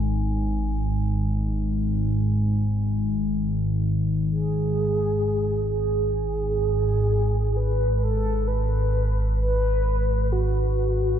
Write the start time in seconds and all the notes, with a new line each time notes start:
Already playing: G#1 G#2 G#5
4.29 G#4
5.69 G#4
7.57 B4
8.03 A4
8.47 B4
9.41 B4
10.32 F#4